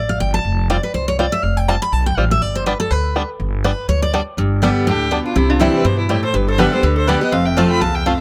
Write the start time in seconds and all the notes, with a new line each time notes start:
Already playing: A1
0.09 F5
0.20 G1 G5
0.34 A5
0.45 F1
0.70 G3 C4 F4 D5
0.83 B4
0.94 C2 C5
1.08 C#5
1.19 G3 C4 F4 D5
1.32 E5
1.43 F1 F5
1.57 G5
1.68 G3 C4 F4 A5
1.82 B5
1.92 B1 A5
2.06 G5
2.17 A1 G3 C4 F4 F5
2.31 E5
2.41 G1 D5
2.55 C5
2.66 G3 B3 D4 B4
2.80 A4
2.91 D2 B4
3.16 G3 B3 D4
3.40 G1
3.64 G3 B3 D4 B4
3.88 D2 C#5
4.02 D5
4.13 G3 B3 D4 D5
4.37 G1 G2
4.62 D3 G3 B3 D4 G4
4.87 D2 A2 D4 G4
5.11 B2 G3 B3 D4
5.25 D4 F4
5.36 C2 C3 C4 E4
5.50 D4 F4
5.60 E3 G3 C4 E4 G4
5.74 G4 B4
5.85 G2 B2 G4 C5
5.99 E4, muted resonator guitar played with a steel bar stroke
6.09 A2 G3 C4 E4 G4
6.23 A4 C5
6.34 G1 G2 G4 B4
6.48 A4 C5
6.58 D3 G3 B3 D4 G4 B4 E5
6.72 B3 G4 A4 C5
6.83 D2 D3 G4 B4
6.96 A4 C5
7.07 D3 G3 B3 D4 G4 B4 D5
7.21 B3 G4 B4 D#5
7.32 F1 F2 C5 F5
7.45 E5 G5
7.57 F3 A3 C4 F4 F5 A5
7.70 G5 B5
7.81 C2 E2 F5 A5
7.94 E5 G5
8.06 F2 A3 C4 F4 C5 F5